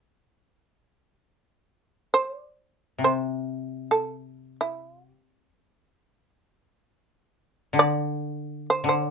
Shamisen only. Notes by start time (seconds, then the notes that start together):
Already playing: D5
2.14 C5
2.39 D5
3.04 C5
3.91 A4
4.61 E4
4.88 F4
5.01 F#4
5.14 G4
7.79 D5
8.70 C5
8.89 C5